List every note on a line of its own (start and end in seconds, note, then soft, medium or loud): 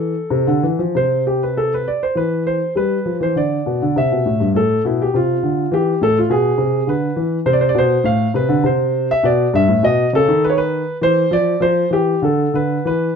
0.00 0.13 E3 medium
0.00 0.65 A4 medium
0.30 0.46 C3 medium
0.47 0.63 D3 medium
0.63 0.79 E3 medium
0.79 0.94 F3 medium
0.95 1.82 C3 soft
0.95 1.22 C5 medium
1.27 1.42 G4 medium
1.43 1.57 B4 medium
1.57 1.72 A4 medium
1.74 1.88 B4 medium
1.88 2.02 D5 medium
2.03 2.17 C5 medium
2.15 2.58 E3 medium
2.15 2.42 B4 medium
2.47 2.72 C5 medium
2.75 2.97 G3 medium
2.75 3.15 B4 medium
3.05 3.20 F3 soft
3.20 3.35 E3 medium
3.20 3.37 C5 medium
3.36 3.58 D3 soft
3.36 3.97 D5 medium
3.66 3.81 B2 soft
3.82 3.96 D3 medium
3.96 4.10 C3 medium
3.96 4.47 E5 medium
4.12 4.25 B2 soft
4.25 4.40 A2 medium
4.40 4.54 G2 soft
4.54 4.76 A2 medium
4.54 4.81 A4 medium
4.85 5.06 B2 soft
4.85 5.00 E4 medium
5.02 5.15 G4 medium
5.14 5.35 C3 soft
5.14 5.73 F4 medium
5.43 5.64 D3 soft
5.71 5.92 E3 medium
5.71 5.97 G4 medium
6.01 6.22 A2 medium
6.01 6.16 A4 medium
6.18 6.31 F4 medium
6.29 6.50 B2 medium
6.29 6.88 G#4 medium
6.58 6.79 C3 medium
6.87 7.08 D3 soft
6.87 7.38 B4 medium
7.16 7.37 E3 medium
7.46 7.67 C3 medium
7.46 7.54 C5 medium
7.53 7.61 D5 medium
7.61 7.69 C5 medium
7.69 7.77 D5 medium
7.74 7.96 B2 medium
7.78 8.05 C5 medium
8.04 8.25 A2 medium
8.04 8.30 F5 medium
8.34 8.48 C3 medium
8.34 8.60 B4 medium
8.49 8.63 D3 medium
8.64 9.07 C3 medium
8.64 9.10 C5 medium
9.11 9.25 E5 medium
9.23 9.45 B2 medium
9.23 9.54 D5 medium
9.53 9.68 G2 medium
9.53 9.84 E5 medium
9.68 9.82 A2 medium
9.83 10.04 B2 medium
9.83 10.09 D#5 medium
10.13 10.27 C#3 medium
10.13 10.44 A4 medium
10.28 10.82 D#3 medium
10.44 10.50 B4 medium
10.50 10.56 C#5 medium
10.58 10.96 B4 medium
11.01 11.23 E3 medium
11.01 11.32 C5 medium
11.31 11.53 F3 medium
11.31 11.62 D5 medium
11.60 11.83 F3 medium
11.60 11.88 C5 medium
11.91 12.13 E3 medium
11.91 12.19 G4 medium
12.22 12.45 D3 medium
12.22 12.55 A4 medium
12.54 12.77 D3 medium
12.54 12.86 B4 medium
12.85 13.08 E3 medium
12.85 13.16 B4 medium